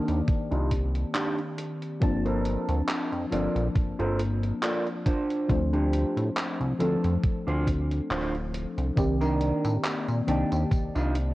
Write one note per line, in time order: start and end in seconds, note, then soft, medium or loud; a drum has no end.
0.00 2.04 D#3 medium
0.00 2.01 A#3 medium
0.00 2.02 C4 medium
0.00 0.18 D4 medium
0.00 0.18 D#4 medium
0.00 1.98 G4 medium
0.00 0.18 A#4 medium
0.00 2.04 D5 medium
0.00 2.03 A5 medium
0.08 0.22 D#2 loud
0.08 closed hi-hat medium
0.28 kick loud
0.28 closed hi-hat medium
0.51 1.05 C2 medium
0.51 0.71 D4 loud
0.51 0.71 D#4 loud
0.51 0.71 F4 loud
0.51 closed hi-hat soft
0.71 kick medium
0.71 closed hi-hat medium
0.95 muted clean electric guitar stroke soft
0.95 closed hi-hat medium
1.14 1.38 D4 medium
1.14 1.38 D#4 medium
1.14 1.39 G4 medium
1.14 clap loud
1.14 closed hi-hat medium
1.39 closed hi-hat soft
1.58 muted clean electric guitar stroke soft
1.58 closed hi-hat loud
1.82 closed hi-hat medium
2.00 2.57 G1 loud
2.00 3.27 F3 medium
2.00 3.27 A#3 medium
2.00 3.27 C4 medium
2.00 3.28 D4 medium
2.00 3.28 A5 loud
2.00 muted clean electric guitar stroke loud
2.00 kick loud
2.00 closed hi-hat medium
2.25 2.79 F4 medium
2.25 2.79 A4 medium
2.25 2.79 A#4 medium
2.25 2.79 C5 loud
2.25 closed hi-hat soft
2.45 closed hi-hat medium
2.69 2.83 D2 loud
2.69 closed hi-hat medium
2.89 clap loud
2.89 closed hi-hat medium
3.12 3.26 F2 loud
3.12 closed hi-hat soft
3.30 3.48 G1 medium
3.30 5.03 F3 medium
3.30 5.03 A#3 medium
3.30 5.04 C4 medium
3.30 5.04 D4 medium
3.30 3.66 F4 medium
3.30 3.66 A4 medium
3.30 3.66 A#4 medium
3.30 3.66 D5 medium
3.30 closed hi-hat medium
3.56 3.69 A#1 loud
3.56 closed hi-hat medium
3.76 3.95 G1 soft
3.76 kick loud
3.76 closed hi-hat medium
3.99 4.53 G1 medium
3.99 4.19 F4 loud
3.99 4.19 A4 loud
3.99 4.19 A#4 loud
3.99 4.19 C5 loud
3.99 closed hi-hat soft
4.19 closed hi-hat medium
4.43 muted clean electric guitar stroke soft
4.43 closed hi-hat medium
4.62 4.86 F4 medium
4.62 4.86 A4 medium
4.62 4.86 A#4 medium
4.62 4.86 D5 medium
4.62 clap loud
4.62 closed hi-hat medium
4.87 closed hi-hat soft
5.06 5.59 D4 medium
5.06 5.59 F4 medium
5.06 5.59 C5 loud
5.06 kick loud
5.06 closed hi-hat medium
5.30 closed hi-hat medium
5.48 6.05 D2 loud
5.48 6.75 F3 medium
5.48 6.75 A3 medium
5.48 6.75 C4 medium
5.48 6.76 D4 medium
5.48 6.76 C5 medium
5.48 kick loud
5.48 closed hi-hat soft
5.73 6.27 D4 medium
5.73 6.27 F4 medium
5.73 6.27 G4 medium
5.73 closed hi-hat soft
5.93 closed hi-hat medium
6.17 6.30 A2 loud
6.17 closed hi-hat medium
6.37 clap loud
6.37 closed hi-hat medium
6.60 6.74 C2 loud
6.60 closed hi-hat soft
6.79 6.96 D2 medium
6.79 8.92 F3 medium
6.79 8.92 A3 medium
6.79 8.93 C4 medium
6.79 7.14 D4 medium
6.79 8.93 D4 medium
6.79 7.14 F4 medium
6.79 7.14 A4 medium
6.79 8.93 A4 medium
6.79 closed hi-hat medium
7.04 7.17 F2 loud
7.04 closed hi-hat medium
7.23 kick loud
7.23 closed hi-hat medium
7.47 8.01 D2 medium
7.47 7.67 D4 loud
7.47 7.67 F4 loud
7.47 7.67 C5 loud
7.47 closed hi-hat soft
7.67 kick medium
7.67 closed hi-hat medium
7.91 muted clean electric guitar stroke soft
7.91 closed hi-hat medium
8.10 8.66 D1 medium
8.10 8.34 D4 medium
8.10 8.34 F4 medium
8.10 8.34 C5 medium
8.10 clap loud
8.10 closed hi-hat medium
8.35 closed hi-hat soft
8.54 muted clean electric guitar stroke soft
8.54 closed hi-hat medium
8.78 8.91 C2 medium
8.78 closed hi-hat medium
8.96 9.53 C2 loud
8.96 10.22 D#3 medium
8.96 10.23 A#3 medium
8.96 10.23 C4 medium
8.96 10.24 G4 loud
8.96 10.24 D5 medium
8.96 muted clean electric guitar stroke loud
8.96 kick loud
8.96 closed hi-hat soft
8.96 tambourine soft
9.21 9.74 D4 medium
9.21 9.74 D#4 medium
9.21 9.75 A#4 loud
9.21 closed hi-hat soft
9.21 tambourine soft
9.41 closed hi-hat medium
9.65 9.78 A2 loud
9.65 closed hi-hat soft
9.65 tambourine medium
9.85 clap loud
9.85 closed hi-hat medium
9.85 tambourine soft
10.08 10.22 A#2 loud
10.08 closed hi-hat soft
10.08 tambourine soft
10.27 10.44 C2 medium
10.27 11.34 D#3 medium
10.27 11.34 A#3 medium
10.27 11.34 C4 medium
10.27 10.61 D4 medium
10.27 10.62 D#4 medium
10.27 10.62 G4 medium
10.27 11.34 D5 medium
10.27 11.34 A5 medium
10.27 closed hi-hat medium
10.52 10.65 D#2 loud
10.52 closed hi-hat soft
10.52 tambourine soft
10.71 10.90 C2 soft
10.71 kick loud
10.71 closed hi-hat medium
10.71 tambourine soft
10.95 11.34 C2 medium
10.95 11.15 D4 loud
10.95 11.15 D#4 loud
10.95 11.15 F4 loud
10.95 closed hi-hat soft
10.95 tambourine soft
11.15 closed hi-hat medium